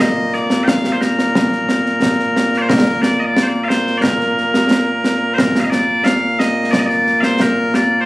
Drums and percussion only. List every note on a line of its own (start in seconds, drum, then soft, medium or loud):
0.33 snare soft
0.50 snare medium
0.68 concert bass drum medium
0.68 snare loud
0.84 snare medium
1.02 snare medium
1.19 snare medium
1.35 concert bass drum medium
1.35 snare medium
1.52 snare soft
1.69 snare medium
1.86 snare soft
2.02 concert bass drum medium
2.02 snare loud
2.19 snare soft
2.36 snare medium
2.54 snare soft
2.70 concert bass drum medium
2.70 snare loud
3.03 snare medium
3.37 snare loud
3.70 snare medium
3.87 snare soft
4.04 concert bass drum medium
4.04 snare loud
4.21 snare soft
4.38 snare soft
4.54 snare medium
4.71 snare loud
5.04 snare medium
5.38 concert bass drum medium
5.38 snare loud
5.55 snare medium
5.72 snare medium
6.06 snare loud
6.40 snare medium
6.73 concert bass drum medium
6.73 snare loud
6.90 snare soft
7.06 snare soft
7.23 snare medium
7.40 concert bass drum medium
7.40 snare medium
7.74 snare medium